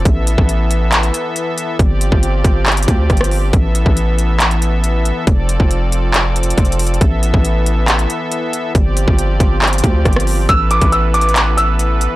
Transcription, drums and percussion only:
0.05 kick, closed hi-hat
0.27 closed hi-hat
0.38 kick
0.49 closed hi-hat
0.71 closed hi-hat
0.92 clap, closed hi-hat
1.03 closed hi-hat
1.14 closed hi-hat
1.36 closed hi-hat
1.58 closed hi-hat
1.79 kick, closed hi-hat
2.01 closed hi-hat
2.12 kick
2.23 closed hi-hat
2.44 kick, closed hi-hat
2.66 clap, closed hi-hat
2.72 closed hi-hat
2.77 closed hi-hat
2.83 closed hi-hat
2.88 kick, closed hi-hat
3.10 kick, cross-stick, closed hi-hat
3.17 cross-stick, closed hi-hat
3.24 closed hi-hat
3.31 open hi-hat
3.53 kick, closed hi-hat
3.75 closed hi-hat
3.86 kick
3.97 closed hi-hat
4.18 closed hi-hat
4.40 clap, closed hi-hat
4.51 closed hi-hat
4.62 closed hi-hat
4.84 closed hi-hat
5.05 closed hi-hat
5.27 kick, closed hi-hat
5.49 closed hi-hat
5.60 kick
5.71 closed hi-hat
5.92 closed hi-hat
6.14 clap, closed hi-hat
6.36 closed hi-hat
6.43 closed hi-hat
6.50 closed hi-hat
6.58 kick, closed hi-hat
6.65 closed hi-hat
6.72 closed hi-hat
6.79 closed hi-hat, open hi-hat
6.87 closed hi-hat
6.94 closed hi-hat
7.01 kick, closed hi-hat
7.23 closed hi-hat
7.34 kick
7.45 closed hi-hat
7.66 closed hi-hat
7.88 clap, closed hi-hat
7.99 closed hi-hat
8.10 closed hi-hat
8.32 closed hi-hat
8.53 closed hi-hat
8.75 kick, closed hi-hat
8.97 closed hi-hat
9.08 kick
9.18 closed hi-hat
9.40 kick, closed hi-hat
9.62 clap, closed hi-hat
9.67 closed hi-hat
9.73 closed hi-hat
9.78 closed hi-hat
9.84 kick, closed hi-hat
10.05 kick, cross-stick, closed hi-hat
10.13 cross-stick, closed hi-hat
10.20 closed hi-hat
10.27 open hi-hat
10.49 kick, closed hi-hat
10.71 closed hi-hat
10.81 kick, closed hi-hat
10.92 closed hi-hat
11.14 closed hi-hat
11.21 closed hi-hat
11.29 closed hi-hat
11.36 clap, closed hi-hat
11.58 closed hi-hat
11.79 closed hi-hat
12.01 closed hi-hat

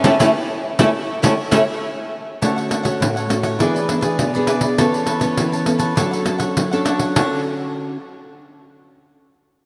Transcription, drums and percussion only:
0.04 pandeiro
0.20 pandeiro
0.79 pandeiro
1.24 pandeiro
1.52 pandeiro
2.42 pandeiro
2.58 pandeiro
2.71 pandeiro
2.85 pandeiro
3.02 pandeiro
3.17 pandeiro
3.30 pandeiro
3.43 pandeiro
3.60 pandeiro
3.76 pandeiro
3.89 pandeiro
4.02 pandeiro
4.19 pandeiro
4.35 pandeiro
4.47 pandeiro
4.61 pandeiro
4.78 pandeiro
4.94 pandeiro
5.07 pandeiro
5.21 pandeiro
5.37 pandeiro
5.53 pandeiro
5.66 pandeiro
5.79 pandeiro
5.97 pandeiro
6.13 pandeiro
6.26 pandeiro
6.40 pandeiro
6.57 pandeiro
6.73 pandeiro
6.86 pandeiro
6.99 pandeiro
7.16 pandeiro

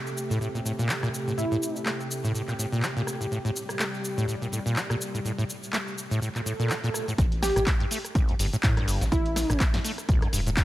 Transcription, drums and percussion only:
0.07 cabasa
0.18 cabasa
0.31 cabasa
0.42 cabasa
0.55 cabasa
0.66 cabasa
0.80 cabasa
0.89 clap, cabasa
1.03 cross-stick, cabasa
1.14 cabasa
1.28 cabasa
1.38 cabasa
1.52 cabasa
1.63 cabasa
1.76 cabasa
1.86 clap, cabasa
2.00 cabasa
2.11 cabasa
2.25 cabasa
2.35 cabasa
2.48 clap, cabasa
2.59 cabasa
2.73 cabasa
2.83 clap, cabasa
2.97 cabasa
3.07 cross-stick, cabasa
3.21 cabasa
3.32 cabasa
3.46 cabasa
3.56 cabasa
3.69 cross-stick, cabasa
3.79 clap, cabasa
3.94 cabasa
4.05 cabasa
4.18 cabasa
4.29 cabasa
4.42 cabasa
4.53 cabasa
4.67 cabasa
4.76 clap, cabasa
4.90 cross-stick, cabasa
5.01 cabasa
5.15 cabasa
5.26 cabasa
5.39 cabasa
5.50 cabasa
5.63 cabasa
5.73 clap, cabasa
5.88 cabasa
5.98 cabasa
6.12 cabasa
6.22 cabasa
6.35 clap, cabasa
6.47 cabasa
6.60 cabasa
6.70 clap, cabasa
6.84 cabasa
6.94 cross-stick, cabasa
7.09 cabasa
7.18 kick, closed hi-hat, cabasa
7.32 closed hi-hat
7.43 cross-stick, snare, open hi-hat, cabasa
7.56 cross-stick, closed hi-hat, cabasa
7.66 kick, clap, closed hi-hat, cabasa
7.80 closed hi-hat
7.91 open hi-hat, cabasa
8.05 cross-stick, closed hi-hat, cabasa
8.15 kick, closed hi-hat, cabasa
8.29 closed hi-hat
8.39 open hi-hat, cabasa
8.53 closed hi-hat, cabasa
8.63 kick, clap, closed hi-hat, cabasa
8.77 cross-stick, closed hi-hat
8.88 open hi-hat, cabasa
9.01 snare, closed hi-hat, cabasa
9.12 kick, closed hi-hat, cabasa
9.26 closed hi-hat
9.36 cross-stick, snare, open hi-hat, cabasa
9.50 cross-stick, closed hi-hat, cabasa
9.60 kick, clap, closed hi-hat, cabasa
9.74 snare, closed hi-hat
9.85 open hi-hat, cabasa
9.98 cross-stick, closed hi-hat, cabasa
10.09 kick, closed hi-hat, cabasa
10.22 cross-stick, closed hi-hat
10.33 open hi-hat, cabasa
10.47 closed hi-hat, cabasa
10.57 kick, clap, closed hi-hat, cabasa

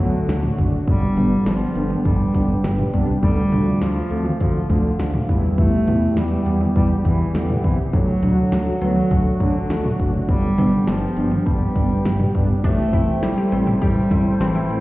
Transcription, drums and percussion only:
0.29 snare, closed hi-hat
0.43 mid tom
0.58 kick, closed hi-hat
0.88 kick, closed hi-hat
1.17 closed hi-hat, mid tom
1.46 snare, closed hi-hat
1.76 closed hi-hat
1.90 mid tom
2.05 kick, closed hi-hat
2.34 kick, closed hi-hat
2.64 snare, closed hi-hat
2.79 mid tom
2.94 kick, closed hi-hat
3.23 kick, closed hi-hat
3.52 closed hi-hat, mid tom
3.82 snare, closed hi-hat
4.11 closed hi-hat
4.26 mid tom
4.40 kick, closed hi-hat
4.70 kick, closed hi-hat
4.99 snare, closed hi-hat
5.14 mid tom
5.29 kick, closed hi-hat
5.58 kick, closed hi-hat
5.87 closed hi-hat, mid tom
6.17 snare, closed hi-hat
6.46 closed hi-hat
6.61 mid tom
6.76 kick, closed hi-hat
7.05 kick, closed hi-hat
7.35 snare, closed hi-hat
7.49 mid tom
7.64 kick, closed hi-hat
7.93 kick, closed hi-hat
8.23 closed hi-hat, mid tom
8.52 snare, closed hi-hat
8.81 closed hi-hat, cowbell
8.96 mid tom
9.11 kick, closed hi-hat
9.40 kick, closed hi-hat
9.70 snare, closed hi-hat
9.85 mid tom
9.99 kick, closed hi-hat
10.29 kick, closed hi-hat
10.58 closed hi-hat, mid tom, cowbell
10.87 snare, closed hi-hat
11.17 closed hi-hat
11.32 mid tom
11.46 kick, closed hi-hat
11.76 kick, closed hi-hat
12.05 snare, closed hi-hat
12.20 mid tom
12.35 kick, closed hi-hat
12.64 kick, closed hi-hat, crash
12.93 kick, closed hi-hat
13.23 snare, closed hi-hat
13.52 closed hi-hat, cowbell
13.67 mid tom
13.82 kick, closed hi-hat
14.11 kick, closed hi-hat
14.41 snare, closed hi-hat
14.70 closed hi-hat

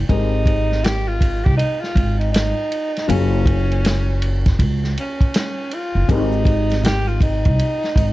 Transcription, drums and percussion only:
0.09 kick, ride
0.46 kick, ride
0.72 snare
0.84 snare, hi-hat pedal, ride
1.21 kick, ride
1.46 kick
1.59 ride
1.84 snare
1.96 kick, ride
2.21 ride
2.34 snare, hi-hat pedal, ride
2.72 ride
2.97 snare, ride
3.09 ride
3.46 kick, ride
3.72 ride
3.85 snare, hi-hat pedal, ride
4.22 ride
4.46 kick, snare, ride
4.59 kick, ride
4.84 snare
4.98 ride
5.21 kick, ride
5.34 snare, hi-hat pedal, ride
5.71 ride
6.09 kick, ride, maracas
6.32 maracas
6.45 kick, ride, maracas
6.70 snare, ride, maracas
6.83 snare, hi-hat pedal, ride, low conga, maracas
7.08 maracas
7.20 kick, ride, low conga, maracas
7.45 kick, ride, maracas
7.59 ride, maracas
7.83 snare, maracas
7.96 kick, ride, maracas

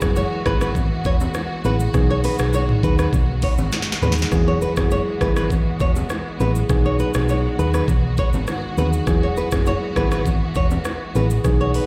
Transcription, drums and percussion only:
0.01 kick, cross-stick, low bongo, shaker
0.16 high bongo, shaker
0.46 kick, cross-stick, high bongo, shaker
0.61 cross-stick, shaker
0.75 kick, low conga, shaker
1.05 kick, shaker
1.20 low bongo, shaker
1.34 cross-stick, high bongo, shaker
1.64 low bongo, low conga, shaker
1.80 shaker
1.94 kick, cross-stick, low conga, shaker
2.24 open hi-hat, low bongo, shaker
2.39 cross-stick, shaker
2.53 high bongo, shaker
2.69 mid tom
2.83 kick, high bongo, shaker
2.99 cross-stick, shaker
3.13 kick, low conga, shaker
3.42 kick, open hi-hat, shaker
3.58 low bongo, shaker
3.72 snare, high bongo, shaker
3.82 snare
3.92 snare
4.02 mid tom, high bongo, low bongo, low conga, shaker
4.12 snare
4.18 shaker
4.22 snare
4.32 kick, cross-stick, low conga, shaker
4.62 shaker
4.76 kick, cross-stick, low bongo, shaker
4.91 high bongo, shaker
5.21 kick, cross-stick, high bongo, shaker
5.36 cross-stick, shaker
5.50 kick, low conga, shaker
5.80 kick, shaker
5.96 low bongo, shaker
6.10 cross-stick, high bongo, shaker
6.40 low bongo, low conga, shaker
6.55 shaker
6.70 kick, cross-stick, low conga, shaker
6.99 shaker
7.14 cross-stick, low bongo, shaker
7.29 high bongo, shaker
7.59 high bongo, shaker
7.74 cross-stick, shaker
7.88 kick, low conga, shaker
8.17 kick, shaker
8.33 low bongo, shaker
8.47 cross-stick, high bongo, shaker
8.78 low bongo, low conga, shaker
8.93 shaker
9.07 kick, cross-stick, low conga, shaker
9.37 shaker
9.52 kick, cross-stick, low bongo, shaker
9.66 high bongo, shaker
9.96 kick, cross-stick, high bongo, shaker
10.11 cross-stick, shaker
10.26 kick, low conga, shaker
10.55 kick, shaker
10.71 low bongo, shaker
10.85 cross-stick, high bongo, shaker
11.15 low bongo, low conga, shaker
11.30 shaker
11.44 kick, cross-stick, low conga, shaker
11.74 open hi-hat, shaker

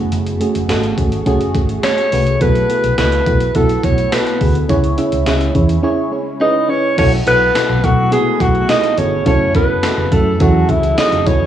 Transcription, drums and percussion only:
0.12 closed hi-hat
0.27 closed hi-hat
0.41 closed hi-hat
0.55 closed hi-hat
0.69 snare, closed hi-hat
0.84 closed hi-hat
0.98 kick, closed hi-hat
1.12 closed hi-hat
1.26 kick, closed hi-hat
1.41 closed hi-hat
1.55 kick, closed hi-hat
1.69 closed hi-hat
1.83 snare, closed hi-hat
1.98 closed hi-hat
2.12 open hi-hat
2.27 closed hi-hat
2.41 kick, closed hi-hat
2.55 closed hi-hat
2.70 closed hi-hat
2.84 closed hi-hat
2.98 snare, closed hi-hat
3.12 closed hi-hat
3.26 kick, closed hi-hat
3.40 closed hi-hat
3.55 kick, closed hi-hat
3.69 closed hi-hat
3.83 kick, closed hi-hat
3.98 closed hi-hat
4.12 snare, closed hi-hat
4.26 closed hi-hat
4.41 kick, open hi-hat
4.55 closed hi-hat
4.69 kick, closed hi-hat
4.84 closed hi-hat
4.98 closed hi-hat
5.12 closed hi-hat
5.26 snare, closed hi-hat
5.41 closed hi-hat
5.55 kick, closed hi-hat
5.69 closed hi-hat
6.98 kick, closed hi-hat, crash
7.26 closed hi-hat
7.55 snare, closed hi-hat, tambourine
7.83 kick, closed hi-hat
8.12 closed hi-hat
8.40 kick, closed hi-hat
8.55 closed hi-hat
8.69 snare, closed hi-hat, tambourine
8.84 closed hi-hat
8.98 closed hi-hat
9.26 kick, closed hi-hat
9.55 kick, closed hi-hat
9.83 snare, closed hi-hat, tambourine
10.12 kick, closed hi-hat
10.40 kick, closed hi-hat
10.69 kick, closed hi-hat
10.83 closed hi-hat
10.98 snare, closed hi-hat, tambourine
11.12 closed hi-hat
11.26 kick, closed hi-hat

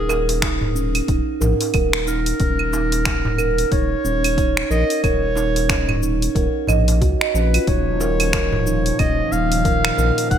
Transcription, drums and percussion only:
0.09 darbuka ka, darbuka tek, claves, shaker
0.29 open hi-hat, darbuka tek, shaker
0.42 finger snap, kick, open hi-hat, darbuka tek, shaker
0.61 darbuka ka, darbuka dum
0.76 shaker
0.95 open hi-hat, claves, shaker
1.08 kick, open hi-hat, shaker
1.41 darbuka tek, darbuka dum, shaker
1.61 open hi-hat, darbuka ka, shaker
1.74 kick, open hi-hat, claves, shaker
1.93 finger snap
2.07 darbuka ka, shaker
2.26 open hi-hat, shaker
2.40 kick, open hi-hat, shaker
2.59 claves
2.73 darbuka ka, darbuka tek, shaker
2.92 open hi-hat, darbuka tek, shaker
3.05 finger snap, kick, open hi-hat, darbuka tek, shaker
3.25 darbuka ka, darbuka dum
3.38 claves, shaker
3.58 open hi-hat, shaker
3.72 kick, open hi-hat, shaker
4.05 darbuka ka, shaker
4.24 open hi-hat, claves, shaker
4.38 kick, open hi-hat, shaker
4.57 finger snap
4.71 shaker
4.90 open hi-hat, shaker
5.04 kick, open hi-hat, claves, shaker
5.36 darbuka ka, darbuka tek, shaker
5.56 open hi-hat, darbuka tek, shaker
5.69 finger snap, kick, open hi-hat, darbuka tek, shaker
5.88 darbuka ka, darbuka dum, claves
6.03 shaker
6.22 open hi-hat, shaker
6.36 kick, open hi-hat, shaker
6.67 darbuka tek, darbuka dum, claves, shaker
6.88 open hi-hat, darbuka ka, shaker
7.02 kick, open hi-hat, shaker
7.21 finger snap
7.35 darbuka ka, shaker
7.54 open hi-hat, claves, shaker
7.67 kick, open hi-hat, shaker
8.00 darbuka ka, darbuka tek, shaker
8.20 open hi-hat, darbuka tek, claves, shaker
8.33 finger snap, kick, open hi-hat, darbuka tek, shaker
8.52 darbuka ka, darbuka dum
8.67 shaker
8.86 open hi-hat, shaker
8.99 kick, open hi-hat, claves, shaker
9.32 darbuka ka, shaker
9.52 open hi-hat, shaker
9.65 kick, open hi-hat, shaker
9.85 finger snap, claves
9.98 shaker
10.18 open hi-hat, shaker
10.31 kick, open hi-hat, shaker

